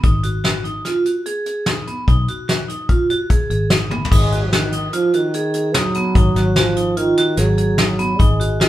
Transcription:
0.03 0.81 G#1 medium
0.03 0.21 D#4 medium
0.03 kick medium
0.03 closed hi-hat medium
0.23 0.41 F#4 medium
0.23 closed hi-hat soft
0.44 0.61 F#4 medium
0.44 snare medium
0.44 closed hi-hat medium
0.64 0.82 D#4 medium
0.64 closed hi-hat soft
0.85 1.02 F4 medium
0.85 snare soft
0.85 closed hi-hat medium
1.05 1.23 F#4 medium
1.05 closed hi-hat soft
1.26 1.43 G#4 medium
1.26 closed hi-hat medium
1.46 1.64 G#4 medium
1.46 closed hi-hat soft
1.66 1.84 D#4 medium
1.66 snare medium
1.66 closed hi-hat medium
1.87 2.04 B3 medium
1.87 closed hi-hat soft
2.08 2.26 B1 medium
2.08 2.25 D#4 medium
2.08 kick medium
2.08 closed hi-hat medium
2.28 2.46 F#4 soft
2.28 closed hi-hat soft
2.48 2.65 F#4 medium
2.48 snare medium
2.48 closed hi-hat medium
2.68 2.86 D#4 medium
2.68 closed hi-hat medium
2.89 3.06 F4 medium
2.89 kick medium
2.89 closed hi-hat medium
3.10 3.27 F#4 medium
3.10 closed hi-hat medium
3.30 3.47 G#4 medium
3.30 kick medium
3.30 closed hi-hat medium
3.50 4.07 G#1 medium
3.50 3.68 G#4 medium
3.50 closed hi-hat medium
3.70 3.88 D#4 medium
3.70 snare loud
3.70 closed hi-hat medium
3.90 4.08 B3 medium
3.90 high tom soft
4.05 floor tom medium
4.11 4.89 G#1 medium
4.11 4.53 G#3 medium
4.11 4.29 D#4 medium
4.11 kick loud
4.11 crash loud
4.32 4.49 F#4 medium
4.32 closed hi-hat soft
4.52 4.92 D#3 medium
4.52 4.70 F#4 medium
4.52 snare loud
4.52 closed hi-hat medium
4.72 4.90 D#4 medium
4.72 closed hi-hat medium
4.92 5.16 F3 medium
4.92 5.10 F4 medium
4.92 closed hi-hat medium
5.13 5.76 D#3 medium
5.13 5.31 F#4 medium
5.13 closed hi-hat medium
5.34 5.51 G#4 medium
5.34 closed hi-hat medium
5.54 5.72 G#4 medium
5.54 closed hi-hat medium
5.74 6.58 F#3 medium
5.74 5.92 D#4 medium
5.74 snare loud
5.74 closed hi-hat medium
5.94 6.12 B3 medium
5.94 closed hi-hat medium
6.15 6.34 G#1 medium
6.15 6.33 D#4 medium
6.15 kick medium
6.15 closed hi-hat medium
6.35 7.13 G#1 medium
6.35 6.53 F#4 medium
6.35 snare soft
6.35 closed hi-hat medium
6.56 6.99 F3 medium
6.56 6.73 F#4 medium
6.56 snare medium
6.56 closed hi-hat medium
6.76 6.94 D#4 medium
6.76 closed hi-hat medium
6.97 7.40 D#3 medium
6.97 7.14 F4 medium
6.97 closed hi-hat medium
7.17 7.35 F#4 medium
7.17 snare soft
7.17 closed hi-hat medium
7.37 8.15 G#1 medium
7.37 8.19 F#3 medium
7.37 7.55 G#4 medium
7.37 snare soft
7.37 closed hi-hat medium
7.58 7.75 G#4 medium
7.58 closed hi-hat medium
7.78 7.96 D#4 medium
7.78 snare loud
7.78 closed hi-hat medium
7.99 8.16 B3 medium
7.99 closed hi-hat medium
8.18 8.69 G#1 loud
8.18 8.69 G#3 medium
8.18 8.36 D#4 medium
8.18 kick medium
8.18 closed hi-hat medium
8.40 8.57 F#4 medium
8.40 closed hi-hat medium
8.60 8.69 F4 medium
8.60 snare loud
8.60 closed hi-hat medium

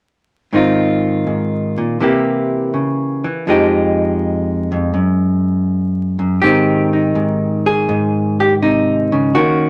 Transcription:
0.53 1.25 G#2 medium
0.53 2.00 D#3 soft
0.53 1.97 C4 medium
0.53 1.98 D#4 medium
0.53 2.01 F4 medium
1.27 1.77 G#2 soft
1.78 2.00 A#2 medium
2.00 2.73 C3 medium
2.00 3.23 E3 medium
2.00 3.45 A#3 soft
2.00 3.45 E4 medium
2.00 3.45 G4 soft
2.74 3.24 C#3 soft
3.24 3.47 E3 medium
3.47 4.71 F2 medium
3.47 4.91 F3 medium
3.47 6.43 G#3 soft
3.47 4.92 D#4 medium
3.47 4.93 G4 medium
4.72 4.93 F2 medium
4.94 6.18 F#2 medium
6.19 6.41 F#2 medium
6.42 7.14 G#2 medium
6.42 9.34 D#3 soft
6.42 9.34 C4 soft
6.42 6.93 D#4 soft
6.42 7.66 G4 medium
6.93 8.62 D#4 soft
7.15 7.88 G#2 medium
7.66 8.39 G#4 medium
7.89 9.33 G#2 medium
8.40 8.53 G4 medium
8.62 9.12 C3 soft
8.62 9.36 D#4 medium
9.12 9.35 C#3 medium
9.35 9.70 D#3 medium
9.35 9.70 A#3 soft
9.35 9.70 C#4 soft
9.35 9.70 F#4 medium

